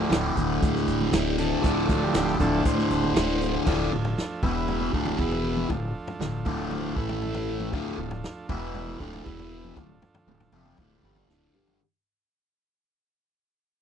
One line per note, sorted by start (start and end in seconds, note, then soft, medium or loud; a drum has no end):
0.00 0.10 A2 medium
0.00 0.12 D3 medium
0.00 0.32 F3 soft
0.00 0.33 A3 medium
0.00 0.33 D4 medium
0.10 0.30 D1 medium
0.10 1.11 D2 medium
0.10 0.37 A2 medium
0.10 0.35 D3 medium
0.10 snare loud
0.10 closed hi-hat loud
0.35 0.56 D1 medium
0.35 1.11 A2 medium
0.35 1.14 D3 medium
0.35 kick medium
0.35 closed hi-hat medium
0.35 low conga medium
0.62 0.81 D1 medium
0.62 kick loud
0.62 closed hi-hat medium
0.62 high conga medium
0.75 snare soft
0.75 high conga medium
0.88 1.06 D1 medium
0.88 closed hi-hat medium
1.01 high conga medium
1.01 low conga medium
1.12 1.50 D1 loud
1.12 1.61 D2 loud
1.12 1.39 A2 loud
1.12 1.36 D3 loud
1.12 snare loud
1.12 closed hi-hat medium
1.38 1.63 A2 medium
1.38 1.63 D3 medium
1.38 2.04 A4 medium
1.38 closed hi-hat medium
1.38 low conga medium
1.62 2.01 D1 loud
1.62 2.12 D2 medium
1.62 1.89 A2 medium
1.62 1.87 D3 loud
1.62 2.36 F3 medium
1.62 2.36 A3 medium
1.62 2.37 D4 medium
1.62 kick loud
1.62 closed hi-hat medium
1.88 2.14 A2 medium
1.88 2.15 D3 medium
1.88 kick medium
1.88 closed hi-hat medium
1.88 high conga medium
2.04 2.38 G4 medium
2.14 2.33 D1 medium
2.14 2.65 D2 medium
2.14 2.41 A2 medium
2.14 2.38 D3 medium
2.14 snare loud
2.14 closed hi-hat loud
2.28 snare soft
2.39 2.59 D1 medium
2.39 3.15 A2 medium
2.39 3.16 D3 medium
2.39 2.63 F3 medium
2.39 2.63 A3 soft
2.39 2.63 D4 medium
2.39 2.66 A4 medium
2.39 kick medium
2.39 closed hi-hat medium
2.39 low conga medium
2.65 2.84 D1 medium
2.65 3.63 C5 medium
2.65 kick loud
2.65 closed hi-hat loud
2.65 high conga medium
2.78 snare soft
2.78 high conga medium
2.90 3.09 D1 loud
2.90 closed hi-hat medium
3.04 high conga medium
3.04 low conga medium
3.15 3.54 D1 loud
3.15 3.65 D2 medium
3.15 3.41 A2 medium
3.15 3.39 D3 loud
3.15 snare loud
3.15 closed hi-hat medium
3.15 high conga medium
3.29 high conga medium
3.41 3.66 A2 medium
3.41 3.65 D3 medium
3.41 closed hi-hat medium
3.41 low conga medium
3.55 low conga medium
3.66 3.90 D1 medium
3.66 3.91 D2 medium
3.66 3.91 A2 medium
3.66 3.92 D3 medium
3.66 4.42 F3 medium
3.66 4.42 A3 medium
3.66 4.42 D4 medium
3.66 4.42 F4 medium
3.66 4.42 A4 medium
3.66 kick medium
3.66 floor tom medium
3.66 crash loud
3.92 4.16 D1 medium
3.92 4.12 D2 medium
3.92 4.12 A2 medium
4.05 floor tom medium
4.18 snare medium
4.42 4.90 E1 medium
4.42 4.92 E2 medium
4.42 4.93 B2 medium
4.42 4.93 E3 medium
4.42 4.93 B3 medium
4.42 4.93 E4 medium
4.42 4.93 B4 medium
4.42 4.93 E5 medium
4.42 kick medium
4.42 floor tom medium
4.42 low conga medium
4.68 floor tom medium
4.68 high conga medium
4.81 high conga medium
4.93 5.17 D1 medium
4.93 5.18 D2 medium
4.93 5.18 A2 medium
4.93 5.18 D3 medium
4.93 5.19 F3 medium
4.93 5.19 A3 medium
4.93 5.19 D4 medium
4.93 5.19 F4 medium
4.93 5.19 A4 medium
4.93 kick medium
5.05 floor tom medium
5.05 high conga medium
5.05 low conga medium
5.18 5.66 E1 medium
5.18 5.69 E2 medium
5.18 5.69 B2 medium
5.18 5.69 E3 medium
5.18 5.69 B3 medium
5.18 5.69 E4 medium
5.18 5.69 B4 medium
5.18 5.69 E5 medium
5.18 kick loud
5.18 floor tom medium
5.31 floor tom medium
5.44 low conga medium
5.57 mid tom medium
5.70 5.93 D1 medium
5.70 5.90 D2 medium
5.70 5.90 A2 medium
5.70 6.96 F3 medium
5.70 8.47 A3 medium
5.70 6.96 D4 soft
5.70 6.96 F4 medium
5.70 8.47 A4 medium
5.70 kick medium
5.70 floor tom medium
6.08 floor tom medium
6.19 6.44 D1 medium
6.19 6.41 D2 medium
6.19 6.41 A2 medium
6.19 snare medium
6.45 6.93 D1 medium
6.45 6.96 D2 medium
6.45 6.95 A2 medium
6.45 6.96 D3 medium
6.45 kick medium
6.45 floor tom medium
6.45 low conga medium
6.71 floor tom medium
6.71 high conga medium
6.96 7.69 A1 medium
6.96 7.72 A2 medium
6.96 7.72 E3 medium
6.96 7.72 A3 medium
6.96 7.72 E4 medium
6.96 7.73 E5 medium
6.96 kick medium
7.09 floor tom medium
7.09 high conga medium
7.09 low conga medium
7.22 floor tom medium
7.34 floor tom medium
7.47 low conga medium
7.60 mid tom medium
7.72 7.96 D1 medium
7.72 7.97 D2 medium
7.72 7.97 A2 loud
7.72 7.98 D3 loud
7.72 8.49 F3 medium
7.72 8.49 D4 medium
7.72 8.49 F4 medium
7.72 kick medium
7.72 floor tom medium
7.98 8.22 D1 medium
7.98 8.19 D2 medium
7.98 8.19 A2 medium
8.11 floor tom medium
8.24 snare medium
8.49 8.97 E1 loud
8.49 8.99 E2 medium
8.49 8.99 B2 medium
8.49 9.00 E3 medium
8.49 8.99 E3 medium
8.49 9.00 B3 medium
8.49 9.00 E4 medium
8.49 9.00 B4 medium
8.49 9.00 E5 medium
8.49 kick loud
8.49 floor tom medium
8.49 low conga medium
8.75 floor tom medium
8.75 high conga medium
8.88 high conga medium
8.99 9.24 D1 medium
8.99 9.24 D2 medium
8.99 9.24 A2 medium
8.99 9.25 D3 medium
8.99 9.25 F3 medium
8.99 9.25 A3 medium
8.99 9.25 D4 medium
8.99 9.25 F4 medium
8.99 9.25 A4 medium
8.99 kick loud
9.13 floor tom medium
9.13 high conga medium
9.13 low conga medium
9.24 9.73 E1 medium
9.24 9.75 E2 medium
9.24 9.75 B2 medium
9.24 9.75 E3 medium
9.24 9.76 E3 loud
9.24 9.75 B3 medium
9.24 9.75 E4 medium
9.24 9.75 B4 medium
9.24 9.75 E5 medium
9.24 kick loud
9.24 floor tom medium
9.39 floor tom medium
9.51 low conga medium
9.64 mid tom medium
9.76 10.00 D1 medium
9.76 9.97 D2 medium
9.76 9.97 A2 medium
9.76 11.78 F3 medium
9.76 11.78 A3 medium
9.76 11.78 D4 medium
9.76 11.78 F4 medium
9.76 11.78 A4 medium
9.76 kick medium
9.76 floor tom medium
10.02 floor tom medium
10.02 high conga medium
10.15 floor tom medium
10.26 10.50 D1 medium
10.26 10.48 D2 medium
10.26 10.48 A2 medium
10.40 floor tom medium
10.52 10.76 F1 medium
10.52 10.77 F2 medium
10.52 10.78 C3 medium
10.52 10.78 F3 medium
10.52 floor tom medium
10.52 low conga medium
10.65 mid tom medium
10.78 11.02 D1 medium
10.78 11.03 D2 medium
10.78 11.03 A2 medium
10.78 11.03 D3 medium
10.78 kick medium
10.78 floor tom medium
10.78 high conga medium
10.91 high conga medium
11.03 11.27 G1 medium
11.03 11.28 G2 medium
11.03 11.29 D3 medium
11.03 11.29 G3 medium
11.03 mid tom medium
11.16 floor tom medium
11.16 high conga medium
11.16 low conga medium
11.28 11.52 D1 medium
11.28 11.54 D2 medium
11.28 11.54 A2 medium
11.28 11.53 D3 medium
11.28 snare medium
11.28 high conga medium
11.53 11.77 G1 medium
11.53 11.79 G2 medium
11.53 11.79 D3 medium
11.53 11.79 G3 medium
11.53 mid tom medium
11.53 low conga medium
11.67 floor tom medium